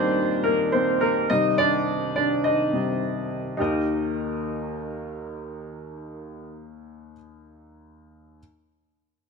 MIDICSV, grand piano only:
0, 0, Header, 1, 2, 480
1, 0, Start_track
1, 0, Key_signature, -3, "major"
1, 0, Tempo, 571973
1, 1093, Time_signature, 4, 2, 24, 8
1, 7800, End_track
2, 0, Start_track
2, 0, Title_t, "Grand piano"
2, 0, Program_c, 0, 0
2, 0, Control_c, 0, 64, 127
2, 0, Note_on_c, 0, 51, 47
2, 0, Note_on_c, 0, 55, 43
2, 0, Note_on_c, 0, 58, 55
2, 0, Note_on_c, 0, 60, 63
2, 0, Note_on_c, 0, 62, 70
2, 0, Note_on_c, 0, 63, 65
2, 0, Note_on_c, 0, 72, 80
2, 0, Note_on_c, 0, 74, 82
2, 0, Note_on_c, 0, 75, 96
2, 343, Note_off_c, 0, 60, 0
2, 365, Note_on_c, 0, 70, 71
2, 368, Note_off_c, 0, 58, 0
2, 380, Note_on_c, 0, 58, 55
2, 381, Note_off_c, 0, 72, 0
2, 600, Note_off_c, 0, 58, 0
2, 606, Note_on_c, 0, 72, 68
2, 616, Note_off_c, 0, 70, 0
2, 623, Note_on_c, 0, 60, 56
2, 841, Note_off_c, 0, 60, 0
2, 846, Note_on_c, 0, 70, 73
2, 856, Note_off_c, 0, 72, 0
2, 860, Note_on_c, 0, 58, 58
2, 1056, Note_off_c, 0, 51, 0
2, 1058, Note_off_c, 0, 55, 0
2, 1072, Note_off_c, 0, 70, 0
2, 1079, Note_off_c, 0, 58, 0
2, 1088, Note_off_c, 0, 75, 0
2, 1088, Note_on_c, 0, 75, 86
2, 1091, Note_on_c, 0, 48, 46
2, 1096, Note_on_c, 0, 55, 45
2, 1102, Note_off_c, 0, 63, 0
2, 1102, Note_on_c, 0, 63, 67
2, 1105, Control_c, 0, 64, 0
2, 1107, Note_off_c, 0, 62, 0
2, 1112, Note_off_c, 0, 74, 0
2, 1240, Control_c, 0, 64, 127
2, 1322, Note_off_c, 0, 63, 0
2, 1326, Note_on_c, 0, 74, 90
2, 1338, Note_off_c, 0, 75, 0
2, 1342, Note_on_c, 0, 62, 56
2, 1411, Note_off_c, 0, 48, 0
2, 1413, Note_off_c, 0, 55, 0
2, 1784, Note_off_c, 0, 62, 0
2, 1798, Note_off_c, 0, 74, 0
2, 1811, Note_on_c, 0, 74, 76
2, 1825, Note_on_c, 0, 62, 56
2, 2042, Note_off_c, 0, 62, 0
2, 2049, Note_on_c, 0, 75, 69
2, 2059, Note_off_c, 0, 74, 0
2, 2061, Note_on_c, 0, 63, 59
2, 2287, Note_off_c, 0, 63, 0
2, 2290, Note_on_c, 0, 48, 36
2, 2294, Note_on_c, 0, 55, 30
2, 2300, Note_on_c, 0, 63, 38
2, 2507, Note_off_c, 0, 48, 0
2, 2509, Note_off_c, 0, 55, 0
2, 2513, Note_off_c, 0, 63, 0
2, 2737, Note_off_c, 0, 75, 0
2, 2998, Note_on_c, 0, 63, 60
2, 3012, Note_on_c, 0, 67, 52
2, 3016, Note_on_c, 0, 39, 55
2, 3022, Note_on_c, 0, 70, 57
2, 3023, Control_c, 0, 64, 0
2, 3034, Note_on_c, 0, 75, 65
2, 3172, Control_c, 0, 64, 127
2, 5967, Note_off_c, 0, 63, 0
2, 5981, Note_off_c, 0, 67, 0
2, 5986, Note_off_c, 0, 39, 0
2, 5991, Note_off_c, 0, 70, 0
2, 6003, Note_off_c, 0, 75, 0
2, 7042, Control_c, 0, 64, 0
2, 7800, End_track
0, 0, End_of_file